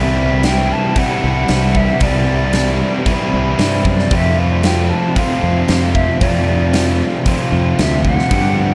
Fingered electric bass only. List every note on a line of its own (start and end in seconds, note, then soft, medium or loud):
0.00 0.72 C2 loud
1.24 1.43 C2 medium
1.49 1.89 C2 loud
2.01 2.81 C2 medium
3.34 3.53 C2 medium
3.59 3.83 G2 medium
3.85 4.09 F#2 medium
4.11 4.92 F2 medium
5.43 5.63 F2 medium
5.69 6.09 F2 medium
6.21 7.01 F2 medium
7.52 7.72 F2 medium
7.79 8.19 D2 loud
8.31 8.74 G2 medium